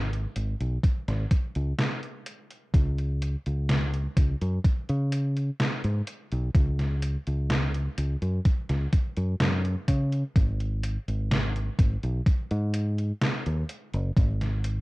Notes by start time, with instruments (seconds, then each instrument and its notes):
Already playing: fingered electric bass G#1
0.13 closed hi-hat
0.36 fingered electric bass G#1, closed hi-hat
0.60 fingered electric bass B1, closed hi-hat
0.83 kick, closed hi-hat
1.08 fingered electric bass G#1, snare, closed hi-hat
1.31 kick, closed hi-hat
1.55 fingered electric bass C#2, closed hi-hat
1.79 snare, closed hi-hat
2.03 closed hi-hat
2.26 closed hi-hat
2.51 closed hi-hat
2.74 fingered electric bass C#2, kick, closed hi-hat
2.98 closed hi-hat
3.22 closed hi-hat
3.46 fingered electric bass C#2, closed hi-hat
3.69 snare, closed hi-hat
3.94 closed hi-hat
4.17 fingered electric bass C#2, kick, closed hi-hat
4.41 fingered electric bass F#2, closed hi-hat
4.64 kick, closed hi-hat
4.89 fingered electric bass C#3, closed hi-hat
5.12 closed hi-hat
5.37 closed hi-hat
5.60 snare, closed hi-hat
5.84 fingered electric bass G#2, closed hi-hat
6.07 closed hi-hat
6.32 fingered electric bass B1, closed hi-hat
6.55 fingered electric bass C#2, kick, closed hi-hat
6.79 snare, closed hi-hat
7.02 closed hi-hat
7.27 fingered electric bass C#2, closed hi-hat
7.50 snare, closed hi-hat
7.74 closed hi-hat
7.98 fingered electric bass C#2, closed hi-hat
8.22 fingered electric bass F#2, closed hi-hat
8.45 kick, closed hi-hat
8.69 fingered electric bass C#2, snare, closed hi-hat
8.93 kick, closed hi-hat
9.17 fingered electric bass F#2, closed hi-hat
9.40 fingered electric bass F#2, snare, closed hi-hat
9.65 closed hi-hat
9.88 fingered electric bass C#3, kick, closed hi-hat
10.12 closed hi-hat
10.36 fingered electric bass G#1, kick, closed hi-hat
10.60 closed hi-hat
10.83 closed hi-hat
11.08 fingered electric bass G#1, closed hi-hat
11.31 snare, closed hi-hat
11.56 closed hi-hat
11.79 fingered electric bass G#1, kick, closed hi-hat
12.03 fingered electric bass B1, closed hi-hat
12.26 muted fingered electric bass stroke, kick, closed hi-hat
12.51 fingered electric bass G#2, closed hi-hat
12.74 closed hi-hat
12.98 closed hi-hat
13.21 snare, closed hi-hat
13.46 fingered electric bass D#2, closed hi-hat
13.69 closed hi-hat
13.94 fingered electric bass F#1, closed hi-hat
14.17 fingered electric bass G#1, kick, closed hi-hat
14.41 snare, closed hi-hat
14.64 closed hi-hat